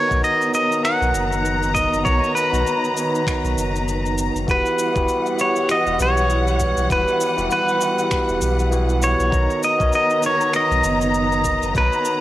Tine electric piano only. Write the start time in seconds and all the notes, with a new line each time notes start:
Already playing: B3 D#4 F#4 A#4 C#5
0.09 B3 D#4 F#4 A#4
0.51 B3 D#4 F#4
0.56 A#4 C#5
2.03 B3 D#4 F#4 A#4 C#5
2.51 B3 D#4 F#4 B4 C#5
2.93 B3 D#4 F#4
2.98 B4 C#5
4.47 B3 E4 F#4 G4 B4
4.94 B3 E4 F#4 G4 B4
5.35 B3 E4 F#4
5.40 G4 B4
6.89 B3 E4 F#4 G4 B4
7.36 B3 E4 F#4 G4 B4
7.77 B3 E4 F#4
7.82 G4 B4
8.70 B3 E4 F#4 G4 B4
9.31 B3 D#4 F#4 A#4 C#5
9.78 B3 D#4 F#4 A#4 C#5
10.20 B3 D#4 F#4
10.25 A#4 C#5
11.73 B3 D#4 F#4 B4 C#5